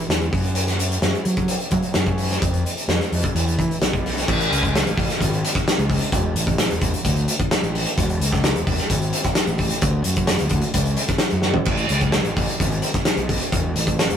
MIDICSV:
0, 0, Header, 1, 3, 480
1, 0, Start_track
1, 0, Key_signature, 3, "major"
1, 0, Tempo, 463320
1, 575, Time_signature, 4, 2, 24, 8
1, 14679, End_track
2, 0, Start_track
2, 0, Title_t, "Fingered electric bass"
2, 0, Program_c, 0, 33
2, 88, Note_on_c, 0, 40, 84
2, 310, Note_off_c, 0, 40, 0
2, 341, Note_on_c, 0, 42, 91
2, 1019, Note_off_c, 0, 42, 0
2, 1052, Note_on_c, 0, 42, 82
2, 1164, Note_off_c, 0, 42, 0
2, 1299, Note_on_c, 0, 54, 93
2, 1519, Note_off_c, 0, 54, 0
2, 1780, Note_on_c, 0, 54, 97
2, 1890, Note_off_c, 0, 54, 0
2, 2016, Note_on_c, 0, 42, 79
2, 2459, Note_off_c, 0, 42, 0
2, 2506, Note_on_c, 0, 41, 94
2, 2724, Note_off_c, 0, 41, 0
2, 2981, Note_on_c, 0, 41, 95
2, 3093, Note_off_c, 0, 41, 0
2, 3232, Note_on_c, 0, 41, 93
2, 3339, Note_off_c, 0, 41, 0
2, 3468, Note_on_c, 0, 40, 104
2, 3687, Note_off_c, 0, 40, 0
2, 3715, Note_on_c, 0, 52, 95
2, 3821, Note_off_c, 0, 52, 0
2, 3948, Note_on_c, 0, 35, 81
2, 4387, Note_off_c, 0, 35, 0
2, 4434, Note_on_c, 0, 33, 111
2, 4650, Note_off_c, 0, 33, 0
2, 4674, Note_on_c, 0, 37, 101
2, 5000, Note_off_c, 0, 37, 0
2, 5034, Note_on_c, 0, 33, 87
2, 5140, Note_off_c, 0, 33, 0
2, 5152, Note_on_c, 0, 33, 85
2, 5260, Note_off_c, 0, 33, 0
2, 5397, Note_on_c, 0, 32, 99
2, 5611, Note_off_c, 0, 32, 0
2, 5989, Note_on_c, 0, 37, 93
2, 6207, Note_off_c, 0, 37, 0
2, 6346, Note_on_c, 0, 28, 105
2, 6565, Note_off_c, 0, 28, 0
2, 6584, Note_on_c, 0, 33, 96
2, 6913, Note_off_c, 0, 33, 0
2, 6947, Note_on_c, 0, 28, 87
2, 7055, Note_off_c, 0, 28, 0
2, 7061, Note_on_c, 0, 28, 93
2, 7172, Note_off_c, 0, 28, 0
2, 7303, Note_on_c, 0, 38, 97
2, 7523, Note_off_c, 0, 38, 0
2, 7906, Note_on_c, 0, 33, 93
2, 8123, Note_off_c, 0, 33, 0
2, 8262, Note_on_c, 0, 28, 111
2, 8481, Note_off_c, 0, 28, 0
2, 8499, Note_on_c, 0, 37, 99
2, 8828, Note_off_c, 0, 37, 0
2, 8860, Note_on_c, 0, 28, 83
2, 8970, Note_off_c, 0, 28, 0
2, 8980, Note_on_c, 0, 28, 88
2, 9090, Note_off_c, 0, 28, 0
2, 9221, Note_on_c, 0, 32, 102
2, 9439, Note_off_c, 0, 32, 0
2, 9813, Note_on_c, 0, 33, 91
2, 10034, Note_off_c, 0, 33, 0
2, 10173, Note_on_c, 0, 38, 102
2, 10393, Note_off_c, 0, 38, 0
2, 10418, Note_on_c, 0, 42, 98
2, 10745, Note_off_c, 0, 42, 0
2, 10780, Note_on_c, 0, 38, 80
2, 10887, Note_off_c, 0, 38, 0
2, 10891, Note_on_c, 0, 38, 87
2, 11003, Note_off_c, 0, 38, 0
2, 11131, Note_on_c, 0, 37, 97
2, 11351, Note_off_c, 0, 37, 0
2, 11729, Note_on_c, 0, 42, 89
2, 11950, Note_off_c, 0, 42, 0
2, 12083, Note_on_c, 0, 33, 107
2, 12306, Note_off_c, 0, 33, 0
2, 12328, Note_on_c, 0, 37, 97
2, 12658, Note_off_c, 0, 37, 0
2, 12689, Note_on_c, 0, 33, 76
2, 12800, Note_off_c, 0, 33, 0
2, 12810, Note_on_c, 0, 33, 84
2, 12920, Note_off_c, 0, 33, 0
2, 13052, Note_on_c, 0, 32, 104
2, 13270, Note_off_c, 0, 32, 0
2, 13644, Note_on_c, 0, 35, 91
2, 13865, Note_off_c, 0, 35, 0
2, 14015, Note_on_c, 0, 28, 102
2, 14231, Note_off_c, 0, 28, 0
2, 14248, Note_on_c, 0, 33, 94
2, 14577, Note_off_c, 0, 33, 0
2, 14611, Note_on_c, 0, 28, 84
2, 14679, Note_off_c, 0, 28, 0
2, 14679, End_track
3, 0, Start_track
3, 0, Title_t, "Drums"
3, 104, Note_on_c, 9, 42, 77
3, 105, Note_on_c, 9, 38, 109
3, 207, Note_off_c, 9, 42, 0
3, 208, Note_off_c, 9, 38, 0
3, 221, Note_on_c, 9, 42, 35
3, 324, Note_off_c, 9, 42, 0
3, 339, Note_on_c, 9, 36, 99
3, 347, Note_on_c, 9, 46, 78
3, 443, Note_off_c, 9, 36, 0
3, 450, Note_off_c, 9, 46, 0
3, 464, Note_on_c, 9, 42, 35
3, 567, Note_off_c, 9, 42, 0
3, 570, Note_on_c, 9, 42, 78
3, 674, Note_off_c, 9, 42, 0
3, 695, Note_on_c, 9, 42, 37
3, 696, Note_on_c, 9, 38, 35
3, 798, Note_off_c, 9, 42, 0
3, 799, Note_off_c, 9, 38, 0
3, 822, Note_on_c, 9, 42, 55
3, 925, Note_off_c, 9, 42, 0
3, 942, Note_on_c, 9, 42, 38
3, 1046, Note_off_c, 9, 42, 0
3, 1058, Note_on_c, 9, 42, 75
3, 1059, Note_on_c, 9, 38, 101
3, 1161, Note_off_c, 9, 42, 0
3, 1162, Note_off_c, 9, 38, 0
3, 1188, Note_on_c, 9, 42, 37
3, 1292, Note_off_c, 9, 42, 0
3, 1297, Note_on_c, 9, 42, 60
3, 1400, Note_off_c, 9, 42, 0
3, 1416, Note_on_c, 9, 42, 39
3, 1420, Note_on_c, 9, 36, 78
3, 1520, Note_off_c, 9, 42, 0
3, 1524, Note_off_c, 9, 36, 0
3, 1534, Note_on_c, 9, 42, 84
3, 1638, Note_off_c, 9, 42, 0
3, 1654, Note_on_c, 9, 42, 39
3, 1757, Note_off_c, 9, 42, 0
3, 1769, Note_on_c, 9, 42, 61
3, 1779, Note_on_c, 9, 36, 81
3, 1873, Note_off_c, 9, 42, 0
3, 1883, Note_off_c, 9, 36, 0
3, 1892, Note_on_c, 9, 42, 41
3, 1995, Note_off_c, 9, 42, 0
3, 2009, Note_on_c, 9, 42, 82
3, 2010, Note_on_c, 9, 38, 112
3, 2113, Note_off_c, 9, 42, 0
3, 2114, Note_off_c, 9, 38, 0
3, 2134, Note_on_c, 9, 42, 38
3, 2141, Note_on_c, 9, 36, 76
3, 2237, Note_off_c, 9, 42, 0
3, 2245, Note_off_c, 9, 36, 0
3, 2257, Note_on_c, 9, 46, 79
3, 2360, Note_off_c, 9, 46, 0
3, 2389, Note_on_c, 9, 42, 40
3, 2390, Note_on_c, 9, 38, 35
3, 2492, Note_off_c, 9, 42, 0
3, 2493, Note_off_c, 9, 38, 0
3, 2506, Note_on_c, 9, 42, 82
3, 2508, Note_on_c, 9, 36, 107
3, 2609, Note_off_c, 9, 42, 0
3, 2611, Note_off_c, 9, 36, 0
3, 2628, Note_on_c, 9, 42, 43
3, 2732, Note_off_c, 9, 42, 0
3, 2757, Note_on_c, 9, 42, 57
3, 2861, Note_off_c, 9, 42, 0
3, 2872, Note_on_c, 9, 42, 38
3, 2976, Note_off_c, 9, 42, 0
3, 2991, Note_on_c, 9, 42, 75
3, 2992, Note_on_c, 9, 38, 101
3, 3094, Note_off_c, 9, 42, 0
3, 3095, Note_off_c, 9, 38, 0
3, 3119, Note_on_c, 9, 42, 40
3, 3120, Note_on_c, 9, 38, 36
3, 3222, Note_off_c, 9, 42, 0
3, 3223, Note_off_c, 9, 38, 0
3, 3238, Note_on_c, 9, 46, 67
3, 3341, Note_off_c, 9, 46, 0
3, 3355, Note_on_c, 9, 36, 74
3, 3362, Note_on_c, 9, 42, 39
3, 3459, Note_off_c, 9, 36, 0
3, 3466, Note_off_c, 9, 42, 0
3, 3478, Note_on_c, 9, 42, 81
3, 3582, Note_off_c, 9, 42, 0
3, 3600, Note_on_c, 9, 42, 36
3, 3704, Note_off_c, 9, 42, 0
3, 3716, Note_on_c, 9, 36, 85
3, 3721, Note_on_c, 9, 42, 61
3, 3819, Note_off_c, 9, 36, 0
3, 3824, Note_off_c, 9, 42, 0
3, 3845, Note_on_c, 9, 42, 36
3, 3949, Note_off_c, 9, 42, 0
3, 3953, Note_on_c, 9, 42, 79
3, 3954, Note_on_c, 9, 38, 107
3, 4057, Note_off_c, 9, 42, 0
3, 4058, Note_off_c, 9, 38, 0
3, 4076, Note_on_c, 9, 36, 78
3, 4082, Note_on_c, 9, 42, 37
3, 4180, Note_off_c, 9, 36, 0
3, 4186, Note_off_c, 9, 42, 0
3, 4205, Note_on_c, 9, 46, 78
3, 4206, Note_on_c, 9, 38, 36
3, 4309, Note_off_c, 9, 46, 0
3, 4310, Note_off_c, 9, 38, 0
3, 4330, Note_on_c, 9, 42, 37
3, 4331, Note_on_c, 9, 38, 33
3, 4433, Note_off_c, 9, 42, 0
3, 4434, Note_off_c, 9, 38, 0
3, 4437, Note_on_c, 9, 36, 106
3, 4439, Note_on_c, 9, 49, 111
3, 4541, Note_off_c, 9, 36, 0
3, 4543, Note_off_c, 9, 49, 0
3, 4563, Note_on_c, 9, 42, 48
3, 4666, Note_off_c, 9, 42, 0
3, 4689, Note_on_c, 9, 42, 66
3, 4792, Note_off_c, 9, 42, 0
3, 4797, Note_on_c, 9, 36, 76
3, 4808, Note_on_c, 9, 42, 46
3, 4901, Note_off_c, 9, 36, 0
3, 4911, Note_off_c, 9, 42, 0
3, 4926, Note_on_c, 9, 42, 91
3, 4927, Note_on_c, 9, 38, 100
3, 5029, Note_off_c, 9, 42, 0
3, 5030, Note_off_c, 9, 38, 0
3, 5042, Note_on_c, 9, 42, 45
3, 5145, Note_off_c, 9, 42, 0
3, 5154, Note_on_c, 9, 36, 87
3, 5165, Note_on_c, 9, 46, 83
3, 5258, Note_off_c, 9, 36, 0
3, 5269, Note_off_c, 9, 46, 0
3, 5284, Note_on_c, 9, 42, 47
3, 5285, Note_on_c, 9, 38, 36
3, 5387, Note_off_c, 9, 42, 0
3, 5388, Note_off_c, 9, 38, 0
3, 5393, Note_on_c, 9, 36, 84
3, 5400, Note_on_c, 9, 42, 101
3, 5497, Note_off_c, 9, 36, 0
3, 5504, Note_off_c, 9, 42, 0
3, 5525, Note_on_c, 9, 42, 46
3, 5628, Note_off_c, 9, 42, 0
3, 5641, Note_on_c, 9, 42, 77
3, 5745, Note_off_c, 9, 42, 0
3, 5752, Note_on_c, 9, 36, 91
3, 5761, Note_on_c, 9, 42, 48
3, 5762, Note_on_c, 9, 38, 34
3, 5855, Note_off_c, 9, 36, 0
3, 5865, Note_off_c, 9, 42, 0
3, 5866, Note_off_c, 9, 38, 0
3, 5880, Note_on_c, 9, 42, 96
3, 5881, Note_on_c, 9, 38, 114
3, 5984, Note_off_c, 9, 42, 0
3, 5985, Note_off_c, 9, 38, 0
3, 5998, Note_on_c, 9, 42, 47
3, 6101, Note_off_c, 9, 42, 0
3, 6108, Note_on_c, 9, 36, 69
3, 6116, Note_on_c, 9, 46, 91
3, 6212, Note_off_c, 9, 36, 0
3, 6220, Note_off_c, 9, 46, 0
3, 6229, Note_on_c, 9, 42, 49
3, 6333, Note_off_c, 9, 42, 0
3, 6344, Note_on_c, 9, 36, 109
3, 6346, Note_on_c, 9, 42, 98
3, 6448, Note_off_c, 9, 36, 0
3, 6450, Note_off_c, 9, 42, 0
3, 6587, Note_on_c, 9, 42, 67
3, 6691, Note_off_c, 9, 42, 0
3, 6703, Note_on_c, 9, 36, 76
3, 6709, Note_on_c, 9, 42, 46
3, 6806, Note_off_c, 9, 36, 0
3, 6813, Note_off_c, 9, 42, 0
3, 6820, Note_on_c, 9, 42, 92
3, 6821, Note_on_c, 9, 38, 99
3, 6924, Note_off_c, 9, 42, 0
3, 6925, Note_off_c, 9, 38, 0
3, 6945, Note_on_c, 9, 42, 44
3, 7049, Note_off_c, 9, 42, 0
3, 7059, Note_on_c, 9, 42, 72
3, 7062, Note_on_c, 9, 36, 84
3, 7162, Note_off_c, 9, 42, 0
3, 7165, Note_off_c, 9, 36, 0
3, 7186, Note_on_c, 9, 42, 48
3, 7290, Note_off_c, 9, 42, 0
3, 7301, Note_on_c, 9, 36, 84
3, 7302, Note_on_c, 9, 42, 93
3, 7405, Note_off_c, 9, 36, 0
3, 7406, Note_off_c, 9, 42, 0
3, 7420, Note_on_c, 9, 42, 45
3, 7523, Note_off_c, 9, 42, 0
3, 7542, Note_on_c, 9, 42, 70
3, 7645, Note_off_c, 9, 42, 0
3, 7662, Note_on_c, 9, 36, 93
3, 7663, Note_on_c, 9, 42, 44
3, 7766, Note_off_c, 9, 36, 0
3, 7766, Note_off_c, 9, 42, 0
3, 7783, Note_on_c, 9, 42, 97
3, 7784, Note_on_c, 9, 38, 119
3, 7886, Note_off_c, 9, 42, 0
3, 7887, Note_off_c, 9, 38, 0
3, 7913, Note_on_c, 9, 42, 45
3, 8017, Note_off_c, 9, 42, 0
3, 8030, Note_on_c, 9, 46, 93
3, 8134, Note_off_c, 9, 46, 0
3, 8146, Note_on_c, 9, 42, 45
3, 8250, Note_off_c, 9, 42, 0
3, 8264, Note_on_c, 9, 36, 105
3, 8267, Note_on_c, 9, 42, 91
3, 8367, Note_off_c, 9, 36, 0
3, 8370, Note_off_c, 9, 42, 0
3, 8387, Note_on_c, 9, 42, 43
3, 8490, Note_off_c, 9, 42, 0
3, 8511, Note_on_c, 9, 42, 70
3, 8614, Note_off_c, 9, 42, 0
3, 8625, Note_on_c, 9, 36, 77
3, 8631, Note_on_c, 9, 42, 44
3, 8632, Note_on_c, 9, 38, 35
3, 8728, Note_off_c, 9, 36, 0
3, 8735, Note_off_c, 9, 42, 0
3, 8736, Note_off_c, 9, 38, 0
3, 8742, Note_on_c, 9, 42, 85
3, 8743, Note_on_c, 9, 38, 106
3, 8846, Note_off_c, 9, 42, 0
3, 8847, Note_off_c, 9, 38, 0
3, 8864, Note_on_c, 9, 42, 47
3, 8968, Note_off_c, 9, 42, 0
3, 8982, Note_on_c, 9, 36, 81
3, 8982, Note_on_c, 9, 46, 83
3, 9086, Note_off_c, 9, 36, 0
3, 9086, Note_off_c, 9, 46, 0
3, 9098, Note_on_c, 9, 42, 46
3, 9099, Note_on_c, 9, 38, 37
3, 9202, Note_off_c, 9, 42, 0
3, 9203, Note_off_c, 9, 38, 0
3, 9219, Note_on_c, 9, 36, 77
3, 9219, Note_on_c, 9, 42, 104
3, 9323, Note_off_c, 9, 36, 0
3, 9323, Note_off_c, 9, 42, 0
3, 9342, Note_on_c, 9, 42, 44
3, 9445, Note_off_c, 9, 42, 0
3, 9456, Note_on_c, 9, 42, 79
3, 9560, Note_off_c, 9, 42, 0
3, 9575, Note_on_c, 9, 42, 46
3, 9576, Note_on_c, 9, 38, 35
3, 9579, Note_on_c, 9, 36, 85
3, 9678, Note_off_c, 9, 42, 0
3, 9679, Note_off_c, 9, 38, 0
3, 9683, Note_off_c, 9, 36, 0
3, 9689, Note_on_c, 9, 42, 101
3, 9690, Note_on_c, 9, 38, 110
3, 9793, Note_off_c, 9, 42, 0
3, 9794, Note_off_c, 9, 38, 0
3, 9812, Note_on_c, 9, 42, 50
3, 9916, Note_off_c, 9, 42, 0
3, 9926, Note_on_c, 9, 46, 87
3, 9935, Note_on_c, 9, 36, 69
3, 10030, Note_off_c, 9, 46, 0
3, 10039, Note_off_c, 9, 36, 0
3, 10049, Note_on_c, 9, 42, 51
3, 10152, Note_off_c, 9, 42, 0
3, 10169, Note_on_c, 9, 42, 100
3, 10175, Note_on_c, 9, 36, 110
3, 10273, Note_off_c, 9, 42, 0
3, 10279, Note_off_c, 9, 36, 0
3, 10403, Note_on_c, 9, 42, 69
3, 10506, Note_off_c, 9, 42, 0
3, 10525, Note_on_c, 9, 42, 48
3, 10534, Note_on_c, 9, 36, 77
3, 10629, Note_off_c, 9, 42, 0
3, 10638, Note_off_c, 9, 36, 0
3, 10643, Note_on_c, 9, 42, 93
3, 10644, Note_on_c, 9, 38, 104
3, 10746, Note_off_c, 9, 42, 0
3, 10747, Note_off_c, 9, 38, 0
3, 10760, Note_on_c, 9, 42, 52
3, 10864, Note_off_c, 9, 42, 0
3, 10872, Note_on_c, 9, 42, 75
3, 10887, Note_on_c, 9, 36, 88
3, 10976, Note_off_c, 9, 42, 0
3, 10991, Note_off_c, 9, 36, 0
3, 10997, Note_on_c, 9, 42, 47
3, 11101, Note_off_c, 9, 42, 0
3, 11124, Note_on_c, 9, 42, 103
3, 11129, Note_on_c, 9, 36, 76
3, 11228, Note_off_c, 9, 42, 0
3, 11233, Note_off_c, 9, 36, 0
3, 11246, Note_on_c, 9, 42, 45
3, 11350, Note_off_c, 9, 42, 0
3, 11361, Note_on_c, 9, 42, 73
3, 11464, Note_off_c, 9, 42, 0
3, 11479, Note_on_c, 9, 42, 44
3, 11480, Note_on_c, 9, 38, 35
3, 11486, Note_on_c, 9, 36, 92
3, 11582, Note_off_c, 9, 42, 0
3, 11583, Note_off_c, 9, 38, 0
3, 11587, Note_on_c, 9, 42, 97
3, 11588, Note_on_c, 9, 38, 115
3, 11590, Note_off_c, 9, 36, 0
3, 11690, Note_off_c, 9, 42, 0
3, 11691, Note_off_c, 9, 38, 0
3, 11707, Note_on_c, 9, 42, 43
3, 11811, Note_off_c, 9, 42, 0
3, 11831, Note_on_c, 9, 38, 68
3, 11934, Note_off_c, 9, 38, 0
3, 11953, Note_on_c, 9, 43, 95
3, 12056, Note_off_c, 9, 43, 0
3, 12073, Note_on_c, 9, 57, 97
3, 12086, Note_on_c, 9, 36, 111
3, 12176, Note_off_c, 9, 57, 0
3, 12189, Note_off_c, 9, 36, 0
3, 12196, Note_on_c, 9, 42, 45
3, 12300, Note_off_c, 9, 42, 0
3, 12318, Note_on_c, 9, 42, 62
3, 12421, Note_off_c, 9, 42, 0
3, 12438, Note_on_c, 9, 42, 42
3, 12447, Note_on_c, 9, 36, 79
3, 12542, Note_off_c, 9, 42, 0
3, 12550, Note_off_c, 9, 36, 0
3, 12559, Note_on_c, 9, 42, 81
3, 12560, Note_on_c, 9, 38, 104
3, 12662, Note_off_c, 9, 42, 0
3, 12663, Note_off_c, 9, 38, 0
3, 12688, Note_on_c, 9, 42, 44
3, 12792, Note_off_c, 9, 42, 0
3, 12810, Note_on_c, 9, 46, 85
3, 12813, Note_on_c, 9, 36, 90
3, 12913, Note_off_c, 9, 46, 0
3, 12916, Note_off_c, 9, 36, 0
3, 12933, Note_on_c, 9, 42, 47
3, 13037, Note_off_c, 9, 42, 0
3, 13054, Note_on_c, 9, 36, 83
3, 13056, Note_on_c, 9, 42, 94
3, 13158, Note_off_c, 9, 36, 0
3, 13159, Note_off_c, 9, 42, 0
3, 13172, Note_on_c, 9, 42, 45
3, 13276, Note_off_c, 9, 42, 0
3, 13283, Note_on_c, 9, 42, 75
3, 13387, Note_off_c, 9, 42, 0
3, 13407, Note_on_c, 9, 42, 46
3, 13408, Note_on_c, 9, 38, 36
3, 13409, Note_on_c, 9, 36, 87
3, 13510, Note_off_c, 9, 42, 0
3, 13511, Note_off_c, 9, 38, 0
3, 13512, Note_off_c, 9, 36, 0
3, 13523, Note_on_c, 9, 42, 97
3, 13524, Note_on_c, 9, 38, 121
3, 13626, Note_off_c, 9, 42, 0
3, 13627, Note_off_c, 9, 38, 0
3, 13646, Note_on_c, 9, 42, 45
3, 13750, Note_off_c, 9, 42, 0
3, 13769, Note_on_c, 9, 46, 95
3, 13770, Note_on_c, 9, 36, 73
3, 13873, Note_off_c, 9, 36, 0
3, 13873, Note_off_c, 9, 46, 0
3, 13898, Note_on_c, 9, 42, 48
3, 14001, Note_off_c, 9, 42, 0
3, 14011, Note_on_c, 9, 36, 103
3, 14015, Note_on_c, 9, 42, 95
3, 14114, Note_off_c, 9, 36, 0
3, 14119, Note_off_c, 9, 42, 0
3, 14253, Note_on_c, 9, 42, 71
3, 14356, Note_off_c, 9, 42, 0
3, 14369, Note_on_c, 9, 36, 74
3, 14373, Note_on_c, 9, 42, 48
3, 14473, Note_off_c, 9, 36, 0
3, 14476, Note_off_c, 9, 42, 0
3, 14495, Note_on_c, 9, 42, 90
3, 14496, Note_on_c, 9, 38, 104
3, 14599, Note_off_c, 9, 42, 0
3, 14600, Note_off_c, 9, 38, 0
3, 14609, Note_on_c, 9, 42, 51
3, 14679, Note_off_c, 9, 42, 0
3, 14679, End_track
0, 0, End_of_file